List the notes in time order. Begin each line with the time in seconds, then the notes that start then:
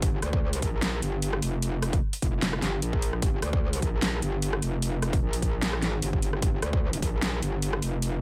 0.02 G1, kick, closed hi-hat
0.22 D2, cross-stick, closed hi-hat
0.33 kick
0.53 closed hi-hat
0.62 A#1, kick, closed hi-hat
0.82 snare, closed hi-hat
1.02 G1, closed hi-hat
1.22 closed hi-hat
1.33 cross-stick
1.42 F1, closed hi-hat
1.62 closed hi-hat
1.82 cross-stick, closed hi-hat
1.93 kick, closed hi-hat
2.13 closed hi-hat
2.22 F1, kick, closed hi-hat
2.42 snare, closed hi-hat
2.53 cross-stick
2.62 G1, snare, closed hi-hat
2.82 A#1, closed hi-hat
2.93 kick
3.02 closed hi-hat
3.13 cross-stick
3.22 G1, kick, closed hi-hat
3.42 D2, cross-stick, closed hi-hat
3.53 kick
3.73 closed hi-hat
3.82 A#1, kick, closed hi-hat
4.02 snare, closed hi-hat
4.22 G1, closed hi-hat
4.42 closed hi-hat
4.53 cross-stick
4.62 F1, closed hi-hat
4.82 closed hi-hat
5.02 cross-stick, closed hi-hat
5.13 kick, closed hi-hat
5.22 A#1
5.33 closed hi-hat
5.42 kick, closed hi-hat
5.62 snare, closed hi-hat
5.73 cross-stick
5.77 A1
5.82 snare, closed hi-hat
6.02 G1, closed hi-hat
6.13 kick
6.22 closed hi-hat
6.33 cross-stick
6.42 G1, kick, closed hi-hat
6.62 D2, cross-stick, closed hi-hat
6.73 kick
6.93 closed hi-hat
7.02 A#1, kick, closed hi-hat
7.22 snare, closed hi-hat
7.42 G1, closed hi-hat
7.62 closed hi-hat
7.73 cross-stick
7.82 F1, closed hi-hat
8.02 closed hi-hat